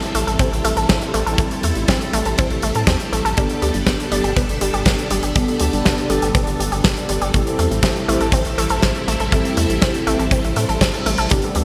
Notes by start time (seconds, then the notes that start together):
Already playing: G3 C4 E4 A4
0.02 closed hi-hat
0.15 A1 A3, closed hi-hat
0.27 A1 A4, closed hi-hat
0.39 A1 C4, kick, closed hi-hat
0.52 A1, closed hi-hat
0.64 A1 A3, closed hi-hat
0.77 A1 A4, closed hi-hat
0.89 A1 C4, kick, snare, closed hi-hat
1.01 closed hi-hat
1.14 A1 A3, closed hi-hat
1.27 A1 A4, closed hi-hat
1.38 A1 A3, kick, closed hi-hat
1.51 closed hi-hat
1.63 E2 A3, closed hi-hat
1.75 A1 A2, closed hi-hat
1.88 A1 C4, kick, snare, closed hi-hat
2.01 closed hi-hat
2.13 A1 A3, closed hi-hat
2.25 A1 A4, closed hi-hat
2.38 A1 C4, kick, closed hi-hat
2.50 A1, closed hi-hat
2.62 A1 A3, closed hi-hat
2.75 A2 A4, closed hi-hat
2.87 E2 C4, kick, snare, closed hi-hat
3.00 closed hi-hat
3.13 A1 A3, closed hi-hat
3.25 A1 A4, closed hi-hat
3.37 G1 G3 B3 D4 G4 A4, kick, closed hi-hat
3.49 closed hi-hat
3.62 D2 G3, closed hi-hat
3.74 G1 G2, closed hi-hat
3.87 G1 B3, kick, snare, closed hi-hat
4.00 closed hi-hat
4.12 G1 G3 B3 D4 G4 A4, closed hi-hat
4.24 G1 G4, closed hi-hat
4.37 G1 B3, kick, closed hi-hat
4.49 G1, closed hi-hat
4.61 G1 G3, closed hi-hat
4.74 G1 G4, closed hi-hat
4.85 G1 B3, kick, snare, closed hi-hat
4.99 closed hi-hat
5.10 G1 G3, closed hi-hat
5.23 G1 G4, closed hi-hat
5.35 G1 G3 B3 D4 G4 A4, kick, closed hi-hat
5.48 closed hi-hat
5.60 D2 G3, closed hi-hat
5.73 G1 G2, closed hi-hat
5.85 G1 B3, kick, snare, closed hi-hat
5.98 closed hi-hat
6.10 G1 G3 B3 D4 G4 A4, closed hi-hat
6.22 G1 G4, closed hi-hat
6.35 G1 B3, kick, closed hi-hat
6.47 G1, closed hi-hat
6.59 G1 G3, closed hi-hat
6.72 G1 G4, closed hi-hat
6.84 G1 B3, kick, snare, closed hi-hat
6.97 closed hi-hat
7.09 G1 G3, closed hi-hat
7.22 G1 G4, closed hi-hat
7.34 A1 G3 A3 C4 E4 G4 A4, kick, closed hi-hat
7.47 closed hi-hat
7.59 E2 A3, closed hi-hat
7.71 A1 A2, closed hi-hat
7.83 A1 C4, kick, snare, closed hi-hat
7.96 closed hi-hat
8.08 A1 A3 C4 E4 G4 A4, closed hi-hat
8.21 A1 A4, closed hi-hat
8.32 A1 C4, kick, closed hi-hat
8.45 A1, closed hi-hat
8.58 A1 A3, closed hi-hat
8.70 A1 A4, closed hi-hat
8.82 A1 C4, kick, snare, closed hi-hat
8.95 closed hi-hat
9.08 A1 A3, closed hi-hat
9.20 A1 A4, closed hi-hat
9.32 A1 A3 C4 E4 G4 A4, kick, closed hi-hat
9.45 closed hi-hat
9.57 E2 A3, closed hi-hat
9.70 A1 A2, closed hi-hat
9.82 A1 C4, kick, snare, closed hi-hat
9.94 closed hi-hat
10.07 A1 A3 C4 E4 G4 A4, closed hi-hat
10.19 A1 A4, closed hi-hat
10.31 A1 C4, kick, closed hi-hat, reverse cymbal
10.44 A1, closed hi-hat
10.56 A2 A3, closed hi-hat
10.69 A1 A4, closed hi-hat
10.81 G1 C4, kick, snare, closed hi-hat
10.94 closed hi-hat
11.06 A1 A3, closed hi-hat
11.18 A1 A4, closed hi-hat
11.30 G1 G3 B3 D4 G4 A4, kick, closed hi-hat
11.42 closed hi-hat
11.55 D2 G3, closed hi-hat